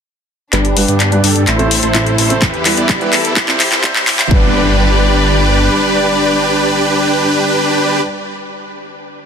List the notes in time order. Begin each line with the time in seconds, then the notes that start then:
0.53 G1 G3 B3 D4 G4 B4, clap, closed hi-hat, riser
0.65 closed hi-hat
0.76 G2 G3 B3 D4 B4, open hi-hat
0.88 G2 D4 G4 D5, closed hi-hat
1.00 clap, closed hi-hat
1.11 G2 G3 B3 D4 B4, closed hi-hat
1.24 G2 D4 G4 A4, open hi-hat
1.36 closed hi-hat
1.47 A1 A3 C4 E4 A4 C5, clap, closed hi-hat
1.59 A2 A3 C4 E4 C5, closed hi-hat
1.71 open hi-hat
1.83 A1 E4 A4 C5, closed hi-hat
1.94 A2 A3 C4 E4 C5, clap, closed hi-hat
2.07 closed hi-hat
2.18 A1 E4 A4 C5, open hi-hat
2.30 A3 C4 E4 C5, closed hi-hat
2.42 E2 E3 E4 G4 B4, kick, clap, closed hi-hat
2.54 closed hi-hat
2.65 G3 B3 E4 B4, clap, open hi-hat
2.77 E2 E4 G4 D5, closed hi-hat
2.89 kick, clap, closed hi-hat
3.00 G3 B3 E4 B4, closed hi-hat
3.13 E2 E4 G4 A4, clap, open hi-hat
3.25 closed hi-hat
3.36 C2 C3 C4 E4 G4 C5, kick, clap, closed hi-hat
3.48 C3 G3 C4 E4 C5, clap, closed hi-hat
3.60 clap, open hi-hat
3.72 C2 E4 G4 C5, clap, closed hi-hat
3.83 C3 G3 C4 E4 C5, kick, clap, closed hi-hat
3.96 clap, closed hi-hat
4.07 C2 E4 G4 C5, clap, open hi-hat
4.19 G2 G3 C4 E4 C5, clap, closed hi-hat
4.29 G1 G3 B3 D4 G4 B4 D5, kick, impact